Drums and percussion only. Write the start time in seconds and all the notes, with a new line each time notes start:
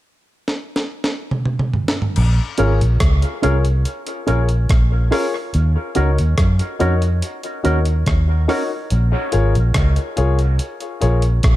0.48 snare
0.76 snare
1.04 snare
1.31 mid tom
1.46 mid tom
1.59 mid tom
1.74 floor tom
1.88 snare
2.02 floor tom
2.16 crash
2.58 closed hi-hat
2.81 closed hi-hat
3.00 kick, cross-stick, closed hi-hat
3.22 closed hi-hat
3.43 closed hi-hat
3.65 closed hi-hat
3.85 closed hi-hat
4.07 closed hi-hat
4.28 closed hi-hat
4.49 closed hi-hat
4.69 kick, cross-stick, closed hi-hat
5.12 cross-stick, open hi-hat
5.54 closed hi-hat
5.95 closed hi-hat
6.18 closed hi-hat
6.38 kick, cross-stick, closed hi-hat
6.59 closed hi-hat
6.80 closed hi-hat
7.02 closed hi-hat
7.22 closed hi-hat
7.43 closed hi-hat
7.65 closed hi-hat
7.85 closed hi-hat
8.06 kick, cross-stick, closed hi-hat
8.49 cross-stick, open hi-hat
8.90 closed hi-hat
9.32 closed hi-hat
9.55 closed hi-hat
9.74 kick, cross-stick, closed hi-hat
9.96 closed hi-hat
10.17 closed hi-hat
10.39 closed hi-hat
10.59 closed hi-hat
10.80 closed hi-hat
11.02 closed hi-hat
11.22 closed hi-hat
11.43 kick, cross-stick, closed hi-hat